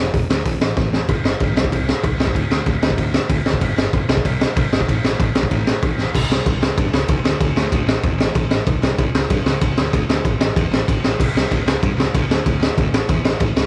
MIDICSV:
0, 0, Header, 1, 3, 480
1, 0, Start_track
1, 0, Tempo, 315956
1, 1639, Time_signature, 4, 2, 24, 8
1, 20758, End_track
2, 0, Start_track
2, 0, Title_t, "Picked electric bass"
2, 0, Program_c, 0, 34
2, 210, Note_on_c, 0, 29, 94
2, 388, Note_off_c, 0, 29, 0
2, 444, Note_on_c, 0, 38, 84
2, 624, Note_off_c, 0, 38, 0
2, 683, Note_on_c, 0, 33, 94
2, 864, Note_off_c, 0, 33, 0
2, 910, Note_on_c, 0, 33, 99
2, 1095, Note_off_c, 0, 33, 0
2, 1168, Note_on_c, 0, 33, 83
2, 1529, Note_off_c, 0, 33, 0
2, 1644, Note_on_c, 0, 31, 92
2, 1791, Note_off_c, 0, 31, 0
2, 1874, Note_on_c, 0, 31, 100
2, 2023, Note_off_c, 0, 31, 0
2, 2133, Note_on_c, 0, 31, 88
2, 2363, Note_off_c, 0, 31, 0
2, 2363, Note_on_c, 0, 36, 88
2, 2510, Note_off_c, 0, 36, 0
2, 2613, Note_on_c, 0, 36, 94
2, 2905, Note_off_c, 0, 36, 0
2, 3092, Note_on_c, 0, 36, 88
2, 3237, Note_off_c, 0, 36, 0
2, 3303, Note_on_c, 0, 36, 79
2, 3457, Note_off_c, 0, 36, 0
2, 3563, Note_on_c, 0, 38, 86
2, 3711, Note_off_c, 0, 38, 0
2, 3798, Note_on_c, 0, 38, 90
2, 3947, Note_off_c, 0, 38, 0
2, 4041, Note_on_c, 0, 38, 97
2, 4189, Note_off_c, 0, 38, 0
2, 4285, Note_on_c, 0, 38, 77
2, 4433, Note_off_c, 0, 38, 0
2, 4530, Note_on_c, 0, 38, 97
2, 4824, Note_off_c, 0, 38, 0
2, 5002, Note_on_c, 0, 38, 91
2, 5151, Note_off_c, 0, 38, 0
2, 5253, Note_on_c, 0, 38, 75
2, 5399, Note_off_c, 0, 38, 0
2, 5486, Note_on_c, 0, 31, 88
2, 5634, Note_off_c, 0, 31, 0
2, 5721, Note_on_c, 0, 31, 98
2, 5871, Note_off_c, 0, 31, 0
2, 5967, Note_on_c, 0, 31, 94
2, 6115, Note_off_c, 0, 31, 0
2, 6203, Note_on_c, 0, 36, 93
2, 6353, Note_off_c, 0, 36, 0
2, 6459, Note_on_c, 0, 36, 103
2, 6752, Note_off_c, 0, 36, 0
2, 6926, Note_on_c, 0, 36, 97
2, 7075, Note_off_c, 0, 36, 0
2, 7176, Note_on_c, 0, 31, 80
2, 7323, Note_off_c, 0, 31, 0
2, 7421, Note_on_c, 0, 33, 88
2, 7566, Note_off_c, 0, 33, 0
2, 7659, Note_on_c, 0, 33, 90
2, 7804, Note_off_c, 0, 33, 0
2, 7891, Note_on_c, 0, 33, 103
2, 8039, Note_off_c, 0, 33, 0
2, 8129, Note_on_c, 0, 33, 86
2, 8278, Note_off_c, 0, 33, 0
2, 8371, Note_on_c, 0, 33, 102
2, 8667, Note_off_c, 0, 33, 0
2, 8844, Note_on_c, 0, 33, 85
2, 8995, Note_off_c, 0, 33, 0
2, 9081, Note_on_c, 0, 33, 65
2, 9233, Note_off_c, 0, 33, 0
2, 9336, Note_on_c, 0, 36, 93
2, 9484, Note_off_c, 0, 36, 0
2, 9565, Note_on_c, 0, 36, 97
2, 9716, Note_off_c, 0, 36, 0
2, 9820, Note_on_c, 0, 36, 95
2, 9966, Note_off_c, 0, 36, 0
2, 10030, Note_on_c, 0, 37, 83
2, 10186, Note_off_c, 0, 37, 0
2, 10291, Note_on_c, 0, 43, 92
2, 10440, Note_off_c, 0, 43, 0
2, 10529, Note_on_c, 0, 37, 92
2, 10679, Note_off_c, 0, 37, 0
2, 10760, Note_on_c, 0, 37, 93
2, 10912, Note_off_c, 0, 37, 0
2, 10996, Note_on_c, 0, 38, 80
2, 11149, Note_off_c, 0, 38, 0
2, 11245, Note_on_c, 0, 38, 94
2, 11396, Note_off_c, 0, 38, 0
2, 11481, Note_on_c, 0, 38, 92
2, 11633, Note_off_c, 0, 38, 0
2, 11723, Note_on_c, 0, 38, 96
2, 11874, Note_off_c, 0, 38, 0
2, 11942, Note_on_c, 0, 33, 91
2, 12100, Note_off_c, 0, 33, 0
2, 12201, Note_on_c, 0, 40, 101
2, 12353, Note_off_c, 0, 40, 0
2, 12422, Note_on_c, 0, 33, 90
2, 12579, Note_off_c, 0, 33, 0
2, 12679, Note_on_c, 0, 33, 93
2, 12831, Note_off_c, 0, 33, 0
2, 12905, Note_on_c, 0, 33, 84
2, 13061, Note_off_c, 0, 33, 0
2, 13163, Note_on_c, 0, 36, 92
2, 13314, Note_off_c, 0, 36, 0
2, 13397, Note_on_c, 0, 36, 90
2, 13550, Note_off_c, 0, 36, 0
2, 13643, Note_on_c, 0, 36, 94
2, 13793, Note_off_c, 0, 36, 0
2, 13893, Note_on_c, 0, 37, 83
2, 14040, Note_off_c, 0, 37, 0
2, 14125, Note_on_c, 0, 43, 100
2, 14275, Note_off_c, 0, 43, 0
2, 14373, Note_on_c, 0, 37, 95
2, 14520, Note_off_c, 0, 37, 0
2, 14604, Note_on_c, 0, 37, 85
2, 14753, Note_off_c, 0, 37, 0
2, 14863, Note_on_c, 0, 38, 77
2, 15006, Note_off_c, 0, 38, 0
2, 15089, Note_on_c, 0, 38, 105
2, 15237, Note_off_c, 0, 38, 0
2, 15327, Note_on_c, 0, 38, 88
2, 15475, Note_off_c, 0, 38, 0
2, 15560, Note_on_c, 0, 32, 88
2, 15710, Note_off_c, 0, 32, 0
2, 15791, Note_on_c, 0, 33, 89
2, 15944, Note_off_c, 0, 33, 0
2, 16037, Note_on_c, 0, 40, 92
2, 16188, Note_off_c, 0, 40, 0
2, 16269, Note_on_c, 0, 33, 101
2, 16422, Note_off_c, 0, 33, 0
2, 16526, Note_on_c, 0, 33, 90
2, 16674, Note_off_c, 0, 33, 0
2, 16764, Note_on_c, 0, 33, 80
2, 16912, Note_off_c, 0, 33, 0
2, 16999, Note_on_c, 0, 36, 89
2, 17149, Note_off_c, 0, 36, 0
2, 17241, Note_on_c, 0, 36, 98
2, 17390, Note_off_c, 0, 36, 0
2, 17491, Note_on_c, 0, 38, 94
2, 17636, Note_off_c, 0, 38, 0
2, 17713, Note_on_c, 0, 37, 88
2, 17864, Note_off_c, 0, 37, 0
2, 17960, Note_on_c, 0, 43, 93
2, 18109, Note_off_c, 0, 43, 0
2, 18176, Note_on_c, 0, 37, 105
2, 18332, Note_off_c, 0, 37, 0
2, 18447, Note_on_c, 0, 37, 95
2, 18593, Note_off_c, 0, 37, 0
2, 18670, Note_on_c, 0, 38, 81
2, 18821, Note_off_c, 0, 38, 0
2, 18923, Note_on_c, 0, 38, 94
2, 19070, Note_off_c, 0, 38, 0
2, 19130, Note_on_c, 0, 38, 95
2, 19287, Note_off_c, 0, 38, 0
2, 19406, Note_on_c, 0, 38, 91
2, 19552, Note_off_c, 0, 38, 0
2, 19619, Note_on_c, 0, 33, 86
2, 19773, Note_off_c, 0, 33, 0
2, 19880, Note_on_c, 0, 40, 102
2, 20027, Note_off_c, 0, 40, 0
2, 20113, Note_on_c, 0, 33, 90
2, 20262, Note_off_c, 0, 33, 0
2, 20353, Note_on_c, 0, 33, 98
2, 20502, Note_off_c, 0, 33, 0
2, 20601, Note_on_c, 0, 37, 78
2, 20747, Note_off_c, 0, 37, 0
2, 20758, End_track
3, 0, Start_track
3, 0, Title_t, "Drums"
3, 210, Note_on_c, 9, 36, 108
3, 210, Note_on_c, 9, 46, 57
3, 362, Note_off_c, 9, 36, 0
3, 362, Note_off_c, 9, 46, 0
3, 459, Note_on_c, 9, 38, 125
3, 611, Note_off_c, 9, 38, 0
3, 693, Note_on_c, 9, 36, 113
3, 693, Note_on_c, 9, 46, 65
3, 845, Note_off_c, 9, 36, 0
3, 845, Note_off_c, 9, 46, 0
3, 931, Note_on_c, 9, 38, 114
3, 1083, Note_off_c, 9, 38, 0
3, 1164, Note_on_c, 9, 38, 66
3, 1169, Note_on_c, 9, 36, 123
3, 1316, Note_off_c, 9, 38, 0
3, 1321, Note_off_c, 9, 36, 0
3, 1417, Note_on_c, 9, 38, 91
3, 1569, Note_off_c, 9, 38, 0
3, 1649, Note_on_c, 9, 49, 65
3, 1653, Note_on_c, 9, 36, 109
3, 1801, Note_off_c, 9, 49, 0
3, 1805, Note_off_c, 9, 36, 0
3, 1900, Note_on_c, 9, 38, 106
3, 2052, Note_off_c, 9, 38, 0
3, 2129, Note_on_c, 9, 49, 62
3, 2136, Note_on_c, 9, 36, 112
3, 2281, Note_off_c, 9, 49, 0
3, 2287, Note_off_c, 9, 36, 0
3, 2383, Note_on_c, 9, 38, 118
3, 2497, Note_on_c, 9, 36, 86
3, 2535, Note_off_c, 9, 38, 0
3, 2618, Note_off_c, 9, 36, 0
3, 2618, Note_on_c, 9, 36, 102
3, 2626, Note_on_c, 9, 49, 65
3, 2770, Note_off_c, 9, 36, 0
3, 2778, Note_off_c, 9, 49, 0
3, 2865, Note_on_c, 9, 38, 107
3, 3017, Note_off_c, 9, 38, 0
3, 3094, Note_on_c, 9, 36, 120
3, 3098, Note_on_c, 9, 49, 66
3, 3246, Note_off_c, 9, 36, 0
3, 3250, Note_off_c, 9, 49, 0
3, 3342, Note_on_c, 9, 38, 96
3, 3455, Note_on_c, 9, 36, 84
3, 3494, Note_off_c, 9, 38, 0
3, 3573, Note_off_c, 9, 36, 0
3, 3573, Note_on_c, 9, 36, 96
3, 3583, Note_on_c, 9, 49, 56
3, 3725, Note_off_c, 9, 36, 0
3, 3735, Note_off_c, 9, 49, 0
3, 3818, Note_on_c, 9, 38, 107
3, 3970, Note_off_c, 9, 38, 0
3, 4043, Note_on_c, 9, 49, 62
3, 4049, Note_on_c, 9, 36, 97
3, 4195, Note_off_c, 9, 49, 0
3, 4201, Note_off_c, 9, 36, 0
3, 4294, Note_on_c, 9, 38, 117
3, 4411, Note_on_c, 9, 36, 103
3, 4445, Note_off_c, 9, 38, 0
3, 4526, Note_on_c, 9, 49, 62
3, 4528, Note_off_c, 9, 36, 0
3, 4528, Note_on_c, 9, 36, 104
3, 4678, Note_off_c, 9, 49, 0
3, 4680, Note_off_c, 9, 36, 0
3, 4770, Note_on_c, 9, 38, 115
3, 4922, Note_off_c, 9, 38, 0
3, 5007, Note_on_c, 9, 36, 115
3, 5007, Note_on_c, 9, 49, 66
3, 5158, Note_off_c, 9, 49, 0
3, 5159, Note_off_c, 9, 36, 0
3, 5252, Note_on_c, 9, 38, 98
3, 5370, Note_on_c, 9, 36, 85
3, 5404, Note_off_c, 9, 38, 0
3, 5486, Note_on_c, 9, 49, 62
3, 5491, Note_off_c, 9, 36, 0
3, 5491, Note_on_c, 9, 36, 86
3, 5638, Note_off_c, 9, 49, 0
3, 5643, Note_off_c, 9, 36, 0
3, 5743, Note_on_c, 9, 38, 111
3, 5895, Note_off_c, 9, 38, 0
3, 5974, Note_on_c, 9, 36, 114
3, 5977, Note_on_c, 9, 49, 56
3, 6126, Note_off_c, 9, 36, 0
3, 6129, Note_off_c, 9, 49, 0
3, 6214, Note_on_c, 9, 38, 127
3, 6336, Note_on_c, 9, 36, 97
3, 6366, Note_off_c, 9, 38, 0
3, 6457, Note_off_c, 9, 36, 0
3, 6457, Note_on_c, 9, 36, 108
3, 6459, Note_on_c, 9, 49, 69
3, 6609, Note_off_c, 9, 36, 0
3, 6611, Note_off_c, 9, 49, 0
3, 6700, Note_on_c, 9, 38, 109
3, 6852, Note_off_c, 9, 38, 0
3, 6935, Note_on_c, 9, 49, 75
3, 6938, Note_on_c, 9, 36, 117
3, 7087, Note_off_c, 9, 49, 0
3, 7090, Note_off_c, 9, 36, 0
3, 7180, Note_on_c, 9, 38, 111
3, 7299, Note_on_c, 9, 36, 89
3, 7332, Note_off_c, 9, 38, 0
3, 7421, Note_off_c, 9, 36, 0
3, 7421, Note_on_c, 9, 36, 102
3, 7427, Note_on_c, 9, 49, 66
3, 7572, Note_off_c, 9, 36, 0
3, 7579, Note_off_c, 9, 49, 0
3, 7662, Note_on_c, 9, 38, 107
3, 7814, Note_off_c, 9, 38, 0
3, 7895, Note_on_c, 9, 36, 121
3, 7900, Note_on_c, 9, 49, 62
3, 8047, Note_off_c, 9, 36, 0
3, 8052, Note_off_c, 9, 49, 0
3, 8132, Note_on_c, 9, 38, 127
3, 8253, Note_on_c, 9, 36, 102
3, 8284, Note_off_c, 9, 38, 0
3, 8369, Note_on_c, 9, 49, 66
3, 8373, Note_off_c, 9, 36, 0
3, 8373, Note_on_c, 9, 36, 95
3, 8521, Note_off_c, 9, 49, 0
3, 8525, Note_off_c, 9, 36, 0
3, 8614, Note_on_c, 9, 38, 107
3, 8766, Note_off_c, 9, 38, 0
3, 8848, Note_on_c, 9, 49, 63
3, 8852, Note_on_c, 9, 36, 122
3, 9000, Note_off_c, 9, 49, 0
3, 9004, Note_off_c, 9, 36, 0
3, 9095, Note_on_c, 9, 38, 62
3, 9247, Note_off_c, 9, 38, 0
3, 9337, Note_on_c, 9, 36, 113
3, 9345, Note_on_c, 9, 57, 116
3, 9489, Note_off_c, 9, 36, 0
3, 9497, Note_off_c, 9, 57, 0
3, 9591, Note_on_c, 9, 38, 110
3, 9743, Note_off_c, 9, 38, 0
3, 9815, Note_on_c, 9, 36, 115
3, 9817, Note_on_c, 9, 51, 76
3, 9967, Note_off_c, 9, 36, 0
3, 9969, Note_off_c, 9, 51, 0
3, 10064, Note_on_c, 9, 38, 122
3, 10216, Note_off_c, 9, 38, 0
3, 10296, Note_on_c, 9, 36, 123
3, 10297, Note_on_c, 9, 51, 87
3, 10448, Note_off_c, 9, 36, 0
3, 10449, Note_off_c, 9, 51, 0
3, 10534, Note_on_c, 9, 38, 113
3, 10686, Note_off_c, 9, 38, 0
3, 10759, Note_on_c, 9, 51, 91
3, 10769, Note_on_c, 9, 36, 121
3, 10911, Note_off_c, 9, 51, 0
3, 10921, Note_off_c, 9, 36, 0
3, 11016, Note_on_c, 9, 38, 112
3, 11167, Note_off_c, 9, 38, 0
3, 11249, Note_on_c, 9, 51, 83
3, 11250, Note_on_c, 9, 36, 114
3, 11401, Note_off_c, 9, 51, 0
3, 11402, Note_off_c, 9, 36, 0
3, 11497, Note_on_c, 9, 38, 102
3, 11649, Note_off_c, 9, 38, 0
3, 11730, Note_on_c, 9, 36, 105
3, 11732, Note_on_c, 9, 51, 83
3, 11882, Note_off_c, 9, 36, 0
3, 11884, Note_off_c, 9, 51, 0
3, 11977, Note_on_c, 9, 38, 127
3, 12129, Note_off_c, 9, 38, 0
3, 12202, Note_on_c, 9, 51, 72
3, 12207, Note_on_c, 9, 36, 123
3, 12354, Note_off_c, 9, 51, 0
3, 12359, Note_off_c, 9, 36, 0
3, 12460, Note_on_c, 9, 38, 110
3, 12612, Note_off_c, 9, 38, 0
3, 12690, Note_on_c, 9, 36, 119
3, 12691, Note_on_c, 9, 51, 78
3, 12841, Note_off_c, 9, 36, 0
3, 12843, Note_off_c, 9, 51, 0
3, 12925, Note_on_c, 9, 38, 110
3, 13077, Note_off_c, 9, 38, 0
3, 13168, Note_on_c, 9, 36, 124
3, 13169, Note_on_c, 9, 51, 76
3, 13320, Note_off_c, 9, 36, 0
3, 13321, Note_off_c, 9, 51, 0
3, 13415, Note_on_c, 9, 38, 112
3, 13567, Note_off_c, 9, 38, 0
3, 13647, Note_on_c, 9, 51, 80
3, 13650, Note_on_c, 9, 36, 113
3, 13798, Note_off_c, 9, 51, 0
3, 13802, Note_off_c, 9, 36, 0
3, 13897, Note_on_c, 9, 38, 124
3, 14049, Note_off_c, 9, 38, 0
3, 14127, Note_on_c, 9, 51, 86
3, 14132, Note_on_c, 9, 36, 120
3, 14279, Note_off_c, 9, 51, 0
3, 14284, Note_off_c, 9, 36, 0
3, 14370, Note_on_c, 9, 38, 99
3, 14522, Note_off_c, 9, 38, 0
3, 14602, Note_on_c, 9, 51, 89
3, 14609, Note_on_c, 9, 36, 120
3, 14754, Note_off_c, 9, 51, 0
3, 14761, Note_off_c, 9, 36, 0
3, 14850, Note_on_c, 9, 38, 112
3, 15002, Note_off_c, 9, 38, 0
3, 15092, Note_on_c, 9, 36, 110
3, 15097, Note_on_c, 9, 51, 82
3, 15244, Note_off_c, 9, 36, 0
3, 15249, Note_off_c, 9, 51, 0
3, 15337, Note_on_c, 9, 38, 116
3, 15489, Note_off_c, 9, 38, 0
3, 15571, Note_on_c, 9, 36, 112
3, 15574, Note_on_c, 9, 51, 70
3, 15722, Note_off_c, 9, 36, 0
3, 15726, Note_off_c, 9, 51, 0
3, 15810, Note_on_c, 9, 38, 120
3, 15961, Note_off_c, 9, 38, 0
3, 16049, Note_on_c, 9, 36, 117
3, 16057, Note_on_c, 9, 51, 85
3, 16201, Note_off_c, 9, 36, 0
3, 16208, Note_off_c, 9, 51, 0
3, 16306, Note_on_c, 9, 38, 99
3, 16458, Note_off_c, 9, 38, 0
3, 16532, Note_on_c, 9, 36, 117
3, 16536, Note_on_c, 9, 51, 83
3, 16684, Note_off_c, 9, 36, 0
3, 16688, Note_off_c, 9, 51, 0
3, 16775, Note_on_c, 9, 38, 106
3, 16927, Note_off_c, 9, 38, 0
3, 17013, Note_on_c, 9, 36, 107
3, 17023, Note_on_c, 9, 49, 101
3, 17165, Note_off_c, 9, 36, 0
3, 17175, Note_off_c, 9, 49, 0
3, 17272, Note_on_c, 9, 38, 110
3, 17424, Note_off_c, 9, 38, 0
3, 17491, Note_on_c, 9, 36, 113
3, 17493, Note_on_c, 9, 51, 75
3, 17643, Note_off_c, 9, 36, 0
3, 17645, Note_off_c, 9, 51, 0
3, 17739, Note_on_c, 9, 38, 127
3, 17891, Note_off_c, 9, 38, 0
3, 17969, Note_on_c, 9, 36, 115
3, 17972, Note_on_c, 9, 51, 82
3, 18121, Note_off_c, 9, 36, 0
3, 18124, Note_off_c, 9, 51, 0
3, 18224, Note_on_c, 9, 38, 112
3, 18376, Note_off_c, 9, 38, 0
3, 18449, Note_on_c, 9, 51, 87
3, 18450, Note_on_c, 9, 36, 122
3, 18601, Note_off_c, 9, 51, 0
3, 18602, Note_off_c, 9, 36, 0
3, 18699, Note_on_c, 9, 38, 117
3, 18851, Note_off_c, 9, 38, 0
3, 18926, Note_on_c, 9, 51, 78
3, 18929, Note_on_c, 9, 36, 107
3, 19078, Note_off_c, 9, 51, 0
3, 19081, Note_off_c, 9, 36, 0
3, 19179, Note_on_c, 9, 38, 112
3, 19331, Note_off_c, 9, 38, 0
3, 19410, Note_on_c, 9, 36, 109
3, 19410, Note_on_c, 9, 51, 74
3, 19562, Note_off_c, 9, 36, 0
3, 19562, Note_off_c, 9, 51, 0
3, 19657, Note_on_c, 9, 38, 127
3, 19809, Note_off_c, 9, 38, 0
3, 19880, Note_on_c, 9, 51, 78
3, 19890, Note_on_c, 9, 36, 118
3, 20032, Note_off_c, 9, 51, 0
3, 20042, Note_off_c, 9, 36, 0
3, 20127, Note_on_c, 9, 38, 112
3, 20279, Note_off_c, 9, 38, 0
3, 20356, Note_on_c, 9, 51, 85
3, 20367, Note_on_c, 9, 36, 123
3, 20508, Note_off_c, 9, 51, 0
3, 20518, Note_off_c, 9, 36, 0
3, 20607, Note_on_c, 9, 38, 120
3, 20758, Note_off_c, 9, 38, 0
3, 20758, End_track
0, 0, End_of_file